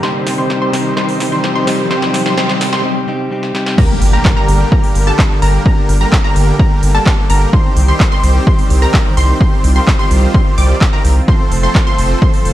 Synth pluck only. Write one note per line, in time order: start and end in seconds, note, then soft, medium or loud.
0.03 0.32 C6 medium
0.38 0.59 C6 medium
0.62 0.94 C6 loud
0.97 1.26 C6 medium
1.32 1.53 C6 medium
1.55 1.88 C6 loud
1.91 2.20 C6 medium
2.26 2.36 C6 medium
2.38 2.67 C6 loud
2.73 2.83 C6 loud
3.78 4.07 A#5 medium
4.13 4.34 A#5 medium
4.37 4.69 A#5 loud
4.72 5.04 A#5 medium
5.07 5.39 A5 loud
5.42 5.63 A#5 loud
5.66 5.95 A#5 loud
6.01 6.21 A#5 medium
6.24 6.57 A#5 loud
6.59 6.92 A#5 loud
6.95 7.27 A5 loud
7.30 7.50 A#5 loud
7.53 7.82 C6 loud
7.88 8.09 C6 medium
8.12 8.44 C6 loud
8.47 8.79 C6 loud
8.82 9.14 A#5 loud
9.17 9.38 C6 loud
9.41 9.70 C6 loud
9.76 9.96 C6 medium
9.99 10.32 C6 loud
10.34 10.55 C6 medium
10.58 10.76 D6 medium
10.93 11.11 A#5 loud
11.28 11.57 C6 loud
11.63 11.84 C6 loud
11.87 12.19 C6 loud
12.22 12.53 C6 loud